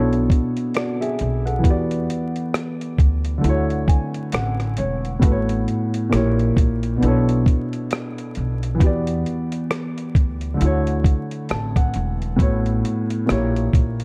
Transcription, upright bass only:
0.00 0.28 B1 loud
1.21 1.62 B1 medium
1.65 2.07 E2 medium
2.99 3.41 D2 medium
3.44 3.86 D2 loud
4.34 4.75 A1 medium
4.79 5.20 E1 medium
5.23 5.65 A1 loud
6.13 6.55 A#1 medium
6.57 6.99 A#1 medium
7.03 7.44 B1 loud
8.37 8.79 B1 medium
8.81 9.23 E2 loud
10.16 10.58 D2 medium
10.61 11.03 D2 loud
11.51 11.92 A1 medium
11.96 12.37 E1 medium
12.39 12.81 A1 loud
13.30 13.71 A#1 loud
13.74 14.04 A#1 medium

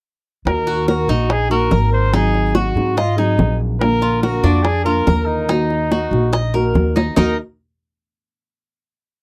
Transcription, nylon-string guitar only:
0.46 1.08 D#3 medium
0.46 1.08 A#3 medium
0.46 1.09 D#4 medium
0.46 1.08 F#4 medium
1.09 1.28 A#3 soft
1.09 1.29 D#4 medium
1.09 1.29 F#4 medium
1.29 muted nylon-string guitar stroke soft
1.50 1.70 A#3 medium
1.50 1.70 D#4 medium
1.50 1.70 F#4 medium
1.70 2.11 D#3 soft
1.70 2.12 A#3 soft
1.70 2.12 D#4 soft
1.70 2.13 F#4 soft
2.12 2.75 D#3 medium
2.12 2.75 F#3 medium
2.12 2.75 C4 medium
2.12 2.75 D#4 medium
2.12 2.75 G#4 medium
2.76 2.96 F#3 soft
2.76 2.96 C4 medium
2.76 2.96 D#4 medium
2.76 2.96 G#4 medium
2.97 muted nylon-string guitar stroke medium
3.17 3.37 F#3 medium
3.17 3.38 C4 medium
3.17 3.38 D#4 medium
3.17 3.38 G#4 medium
3.38 3.80 F#3 soft
3.38 3.80 C4 soft
3.38 3.80 D#4 soft
3.38 3.81 G#4 medium
3.81 4.43 D3 medium
3.81 4.45 A#3 medium
3.81 4.43 D4 medium
3.81 4.42 F4 medium
4.43 4.64 A#3 medium
4.43 4.65 D4 medium
4.43 4.64 F4 medium
4.65 muted nylon-string guitar stroke medium
4.85 5.06 A#3 medium
4.85 5.06 D4 medium
4.85 5.06 F4 medium
5.07 5.48 D3 soft
5.07 5.48 A#3 soft
5.07 5.48 D4 soft
5.07 5.49 F4 medium
5.48 6.11 D#3 medium
5.48 6.11 A#3 medium
5.48 6.11 D#4 medium
5.48 6.10 F#4 medium
6.11 6.32 A#3 soft
6.11 6.32 D#4 medium
6.11 6.32 F#4 medium
6.32 muted nylon-string guitar stroke medium
6.54 6.74 A#3 soft
6.54 6.74 D#4 medium
6.54 6.74 F#4 medium
6.74 7.15 D#3 soft
6.74 7.15 A#3 soft
6.74 7.16 D#4 soft
6.74 7.17 F#4 soft
7.16 7.33 D#3 medium
7.16 7.33 A#3 medium
7.16 7.34 D#4 medium
7.16 7.34 F#4 medium

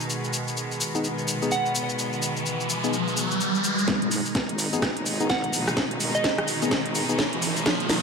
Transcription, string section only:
0.00 3.84 B2 medium
0.00 3.84 D#3 medium
0.00 3.84 G#3 medium
0.10 3.87 B3 medium
3.88 8.02 B2 medium
3.88 8.02 D#3 medium
3.88 7.62 G#3 medium
3.88 8.02 D#4 medium
7.66 8.02 A#3 medium

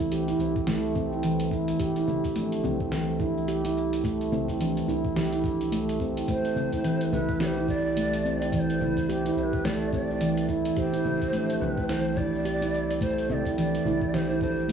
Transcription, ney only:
6.29 7.08 C5 loud
7.13 7.39 B4 loud
7.41 7.47 D5 medium
7.46 7.67 C5 loud
7.69 8.49 D5 loud
8.54 8.60 D5 loud
8.59 9.38 C5 loud
9.38 9.44 C5 medium
9.43 9.66 B4 medium
9.65 9.93 D5 loud
9.94 10.47 D5 medium
10.77 11.63 C5 loud
11.62 11.91 B4 medium
11.90 12.19 C5 loud
12.17 13.01 D5 loud
13.01 13.27 C5 loud
13.30 13.56 D5 loud
13.30 13.35 E5 loud
13.58 14.16 D5 loud
14.15 14.42 C5 loud
14.43 14.72 C5 medium

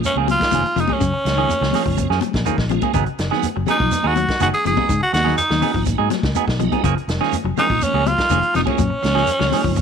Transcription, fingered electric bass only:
0.15 0.35 C#2 medium
0.52 0.62 F1 medium
0.76 0.86 F1 medium
1.01 1.11 F#2 medium
1.25 1.45 C#2 medium
1.61 1.71 C#2 medium
1.73 muted fingered electric bass stroke soft
1.86 2.06 F#1 medium
2.10 2.20 F#2 medium
2.34 2.44 A#1 medium
2.58 2.78 A#1 medium
2.94 3.05 G#1 loud
3.19 3.29 F#1 medium
3.43 muted fingered electric bass stroke soft
3.57 3.66 F#1 medium
3.70 muted fingered electric bass stroke soft
3.80 3.90 B1 medium
4.04 4.24 D#2 medium
4.40 4.50 F#1 medium
4.65 4.75 F#1 medium
4.89 4.99 G#2 medium
5.13 5.33 D#2 medium
5.51 5.60 D#2 medium
5.63 muted fingered electric bass stroke soft
5.74 5.94 G#1 medium
5.99 6.09 G#2 medium
6.23 6.33 C#2 medium
6.48 6.67 B1 medium
6.84 6.94 F#1 loud
7.08 7.18 F1 medium
7.32 muted fingered electric bass stroke soft
7.44 7.54 F1 medium
7.70 7.79 A#1 medium
7.94 8.13 C#2 medium
8.31 8.41 F1 medium
8.55 8.65 F1 medium
8.79 8.89 F#2 loud
9.04 9.23 C#2 medium
9.41 9.50 C#2 medium
9.64 9.81 F#1 medium

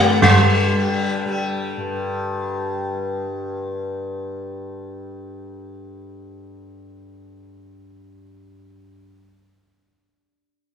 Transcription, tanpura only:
0.00 1.77 G2 medium
0.00 0.22 D3 medium
0.00 0.74 G3 medium
0.22 7.37 D3 medium
0.74 1.26 G3 medium
1.26 7.80 G3 medium
1.77 8.92 G2 medium

